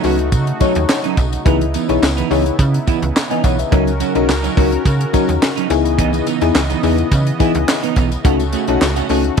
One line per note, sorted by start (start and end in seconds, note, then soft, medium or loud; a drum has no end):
0.00 8.21 C#3 medium
0.00 0.18 F#3 medium
0.00 1.44 A3 medium
0.00 3.68 D#4 medium
0.00 0.29 D#4 medium
0.00 1.44 F#4 loud
0.00 0.29 F#4 medium
0.00 open hi-hat medium
0.04 0.34 C#2 loud
0.04 0.18 C#4 medium
0.04 0.19 F#4 medium
0.04 0.30 A4 medium
0.04 0.30 B4 medium
0.04 tambourine soft
0.19 muted clean electric guitar stroke soft
0.19 closed hi-hat soft
0.32 0.53 C#3 loud
0.32 muted clean electric guitar stroke soft
0.32 kick loud
0.32 closed hi-hat medium
0.32 tambourine medium
0.47 muted clean electric guitar stroke medium
0.47 closed hi-hat medium
0.60 0.78 F#3 medium
0.60 0.76 C#4 medium
0.60 0.99 D#4 medium
0.60 0.74 D#4 loud
0.60 0.99 F#4 medium
0.60 0.99 A4 medium
0.60 0.99 C#5 loud
0.60 kick loud
0.60 closed hi-hat medium
0.60 tambourine soft
0.75 0.85 D#2 loud
0.75 muted clean electric guitar stroke medium
0.75 closed hi-hat medium
0.75 tambourine soft
0.89 muted clean electric guitar stroke soft
0.89 snare loud
0.89 clap medium
0.89 tambourine medium
1.04 1.16 F#3 medium
1.04 1.17 C#4 medium
1.04 1.17 D#4 medium
1.04 closed hi-hat medium
1.17 1.38 B1 medium
1.17 muted clean electric guitar stroke soft
1.17 kick medium
1.17 closed hi-hat medium
1.17 tambourine soft
1.32 muted clean electric guitar stroke soft
1.32 closed hi-hat medium
1.32 tambourine soft
1.45 1.77 C#2 loud
1.45 1.63 E3 medium
1.45 3.70 B3 medium
1.45 1.61 B3 medium
1.45 1.65 D#4 medium
1.45 1.59 D#4 loud
1.45 1.65 E4 medium
1.45 3.70 E4 loud
1.45 1.65 G#4 medium
1.45 1.65 B4 loud
1.45 kick loud
1.45 closed hi-hat loud
1.61 muted clean electric guitar stroke soft
1.61 closed hi-hat medium
1.74 1.88 E3 medium
1.74 1.88 B3 medium
1.74 1.87 D#4 medium
1.74 closed hi-hat medium
1.74 tambourine medium
1.89 1.99 B1 medium
1.89 2.01 E3 medium
1.89 2.02 B3 medium
1.89 2.07 D#4 medium
1.89 2.01 D#4 medium
1.89 2.07 E4 medium
1.89 2.07 G#4 medium
1.89 2.07 C#5 medium
1.89 closed hi-hat soft
1.89 tambourine soft
2.02 2.23 C#2 loud
2.02 snare loud
2.02 clap medium
2.02 tambourine medium
2.17 2.29 E3 medium
2.17 2.30 B3 medium
2.17 2.31 D#4 medium
2.17 closed hi-hat medium
2.17 tambourine medium
2.30 2.51 C#2 medium
2.30 2.44 E3 medium
2.30 2.45 B3 medium
2.30 2.56 D#4 medium
2.30 2.44 D#4 medium
2.30 2.56 E4 medium
2.30 2.56 G#4 medium
2.30 2.56 C#5 medium
2.30 open hi-hat medium
2.30 tambourine medium
2.45 muted clean electric guitar stroke soft
2.45 closed hi-hat medium
2.59 2.79 C#3 loud
2.59 muted clean electric guitar stroke soft
2.59 kick loud
2.59 closed hi-hat medium
2.59 tambourine medium
2.74 muted clean electric guitar stroke soft
2.74 closed hi-hat medium
2.87 3.04 E3 medium
2.87 3.02 B3 medium
2.87 3.01 E4 medium
2.87 kick medium
2.87 closed hi-hat medium
2.87 tambourine soft
3.02 3.12 C#2 medium
3.02 muted clean electric guitar stroke medium
3.02 closed hi-hat medium
3.15 muted clean electric guitar stroke soft
3.15 snare loud
3.15 clap medium
3.15 tambourine medium
3.30 3.42 E3 medium
3.30 3.43 B3 medium
3.30 3.44 D#4 medium
3.30 3.43 D#5 medium
3.30 3.43 G#5 medium
3.30 closed hi-hat medium
3.43 3.64 B1 medium
3.43 3.57 E3 medium
3.43 3.58 B3 medium
3.43 3.57 D#4 medium
3.43 3.58 C#5 medium
3.43 3.58 F#5 medium
3.43 kick medium
3.43 closed hi-hat medium
3.43 tambourine soft
3.58 3.86 B4 medium
3.58 3.86 E5 medium
3.58 muted clean electric guitar stroke soft
3.58 closed hi-hat medium
3.58 tambourine soft
3.71 4.03 C#2 loud
3.71 3.89 F#3 loud
3.71 3.91 C#4 medium
3.71 3.87 C#4 loud
3.71 5.69 C#4 medium
3.71 3.91 D#4 medium
3.71 3.85 D#4 loud
3.71 3.92 F#4 medium
3.71 5.69 F#4 medium
3.71 3.92 A#4 medium
3.71 5.69 A#4 medium
3.71 kick loud
3.71 closed hi-hat medium
3.87 muted clean electric guitar stroke soft
3.87 closed hi-hat soft
3.87 tambourine soft
4.00 4.14 F#3 medium
4.00 4.14 C#4 medium
4.00 4.14 F#4 medium
4.00 closed hi-hat medium
4.00 tambourine medium
4.15 4.30 B1 medium
4.15 4.27 F#3 soft
4.15 4.33 C#4 medium
4.15 4.28 C#4 medium
4.15 4.27 D#4 medium
4.15 4.34 D#4 medium
4.15 4.34 F#4 medium
4.15 4.34 A#4 medium
4.15 closed hi-hat soft
4.28 4.49 C#2 loud
4.28 muted clean electric guitar stroke soft
4.28 snare loud
4.28 clap medium
4.28 tambourine medium
4.43 4.55 F#3 medium
4.43 4.56 C#4 medium
4.43 4.58 D#4 medium
4.43 closed hi-hat medium
4.43 tambourine medium
4.56 4.77 C#2 loud
4.56 4.70 F#3 medium
4.56 4.82 C#4 medium
4.56 4.71 C#4 medium
4.56 4.82 D#4 medium
4.56 4.82 F#4 medium
4.56 4.71 F#4 medium
4.56 4.83 A#4 medium
4.56 kick loud
4.56 open hi-hat medium
4.56 tambourine medium
4.72 muted clean electric guitar stroke soft
4.72 closed hi-hat soft
4.85 5.06 C#3 loud
4.85 muted clean electric guitar stroke soft
4.85 kick loud
4.85 closed hi-hat medium
4.85 tambourine soft
5.00 muted clean electric guitar stroke soft
5.00 closed hi-hat medium
5.13 5.31 F#3 medium
5.13 5.52 C#4 medium
5.13 5.28 C#4 medium
5.13 5.52 D#4 medium
5.13 5.27 D#4 medium
5.13 5.52 F#4 medium
5.13 5.52 A#4 loud
5.13 kick medium
5.13 closed hi-hat medium
5.13 tambourine medium
5.28 5.38 D#2 medium
5.28 muted clean electric guitar stroke medium
5.28 closed hi-hat medium
5.28 tambourine soft
5.41 muted clean electric guitar stroke soft
5.41 snare loud
5.41 clap loud
5.41 tambourine medium
5.56 5.69 F#3 medium
5.56 5.70 C#4 medium
5.56 5.70 D#4 loud
5.56 closed hi-hat medium
5.70 6.21 C#2 loud
5.70 8.22 E3 medium
5.70 6.27 B3 medium
5.70 8.22 B3 medium
5.70 6.27 D#4 medium
5.70 6.27 E4 medium
5.70 6.27 G#4 loud
5.70 9.34 D#5 medium
5.70 muted clean electric guitar stroke soft
5.70 closed hi-hat medium
5.70 tambourine soft
5.85 muted clean electric guitar stroke medium
5.85 closed hi-hat medium
5.85 tambourine soft
5.98 6.16 E3 medium
5.98 6.13 B3 loud
5.98 6.12 D#4 loud
5.98 kick loud
5.98 closed hi-hat loud
6.13 muted clean electric guitar stroke soft
6.13 closed hi-hat soft
6.13 tambourine soft
6.26 6.40 E3 medium
6.26 6.41 B3 medium
6.26 6.40 D#4 medium
6.26 closed hi-hat medium
6.26 tambourine medium
6.41 6.51 E2 medium
6.41 6.53 E3 soft
6.41 6.60 B3 medium
6.41 6.54 B3 medium
6.41 6.54 D#4 medium
6.41 6.60 D#4 medium
6.41 6.60 E4 medium
6.41 6.60 G#4 loud
6.41 closed hi-hat medium
6.41 tambourine soft
6.55 6.75 C#2 medium
6.55 muted clean electric guitar stroke soft
6.55 snare loud
6.55 clap medium
6.55 tambourine medium
6.70 6.82 E3 medium
6.70 6.83 B3 medium
6.70 6.84 D#4 medium
6.70 closed hi-hat medium
6.70 tambourine medium
6.83 7.04 E2 medium
6.83 6.97 E3 medium
6.83 7.08 B3 medium
6.83 6.97 B3 medium
6.83 7.09 D#4 medium
6.83 6.97 D#4 medium
6.83 7.09 E4 medium
6.83 7.09 G#4 medium
6.83 open hi-hat medium
6.83 tambourine medium
6.98 muted clean electric guitar stroke soft
6.98 closed hi-hat medium
7.11 7.32 C#3 loud
7.11 muted clean electric guitar stroke soft
7.11 kick medium
7.11 closed hi-hat medium
7.11 tambourine medium
7.26 muted clean electric guitar stroke soft
7.26 closed hi-hat medium
7.39 7.57 E3 medium
7.39 7.78 B3 medium
7.39 7.55 B3 medium
7.39 7.78 D#4 medium
7.39 7.78 E4 medium
7.39 7.54 E4 medium
7.39 7.78 G#4 loud
7.39 kick loud
7.39 closed hi-hat medium
7.39 tambourine soft
7.55 7.65 C#2 loud
7.55 muted clean electric guitar stroke medium
7.55 closed hi-hat medium
7.68 muted clean electric guitar stroke soft
7.68 snare loud
7.68 clap loud
7.68 tambourine medium
7.83 7.95 E3 medium
7.83 7.96 B3 medium
7.83 7.97 D#4 loud
7.83 closed hi-hat medium
7.96 8.17 B1 loud
7.96 8.10 E3 medium
7.96 8.11 B3 medium
7.96 8.10 D#4 medium
7.96 kick medium
7.96 closed hi-hat medium
7.96 tambourine soft
8.11 muted clean electric guitar stroke medium
8.11 closed hi-hat medium
8.11 tambourine soft
8.24 8.56 C#2 loud
8.24 9.37 C#3 medium
8.24 8.42 A3 medium
8.24 9.37 A3 medium
8.24 8.44 C#4 medium
8.24 8.39 C#4 medium
8.24 8.44 D#4 medium
8.24 8.44 F#4 medium
8.24 9.40 F#4 medium
8.24 8.38 F#4 medium
8.24 8.44 A4 medium
8.24 kick loud
8.24 closed hi-hat loud
8.39 muted clean electric guitar stroke soft
8.39 closed hi-hat soft
8.39 tambourine soft
8.53 8.67 A3 medium
8.53 8.67 C#4 medium
8.53 8.67 G#4 medium
8.53 closed hi-hat medium
8.53 tambourine medium
8.68 8.78 B1 medium
8.68 8.80 A3 medium
8.68 8.86 C#4 medium
8.68 8.80 C#4 medium
8.68 8.86 D#4 medium
8.68 8.80 F#4 medium
8.68 8.87 F#4 medium
8.68 8.87 A4 medium
8.68 closed hi-hat soft
8.81 9.02 C#2 loud
8.81 muted clean electric guitar stroke soft
8.81 snare loud
8.81 clap medium
8.81 tambourine medium
8.96 9.08 A3 medium
8.96 9.09 C#4 medium
8.96 9.11 F#4 medium
8.96 closed hi-hat medium
8.96 tambourine medium
9.09 9.30 C#2 loud
9.09 9.23 A3 medium
9.09 9.35 C#4 medium
9.09 9.24 C#4 medium
9.09 9.35 D#4 medium
9.09 9.35 F#4 medium
9.09 9.24 G#4 medium
9.09 9.35 A4 medium
9.09 open hi-hat medium
9.09 tambourine medium
9.24 muted clean electric guitar stroke soft
9.24 closed hi-hat soft